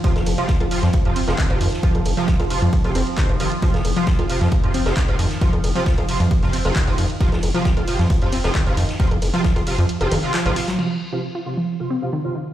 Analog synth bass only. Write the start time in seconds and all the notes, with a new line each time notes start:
0.16 F1
0.27 F1
0.61 F1
0.83 F2
1.05 F2
1.28 F1
1.50 G#1
1.61 F2
1.95 F1
2.06 F1
2.40 F1
2.62 F2
2.85 F1
2.95 F1
3.29 G#1
3.74 F1
3.85 F1
4.19 F1
4.41 F2
4.64 F2
4.86 F1
5.08 G#1
5.19 F2
5.53 F1
5.64 F1
5.98 F1
6.20 F2
6.43 F2
6.65 F1
6.87 G#1
6.98 F2
7.32 F1
7.43 F1
7.77 F1
7.99 F2
8.22 F2
8.44 F1
8.66 G#1
8.77 F2
9.11 F1
9.22 F1
9.56 F1
9.78 F2
10.01 F1
10.12 F1
10.46 G#1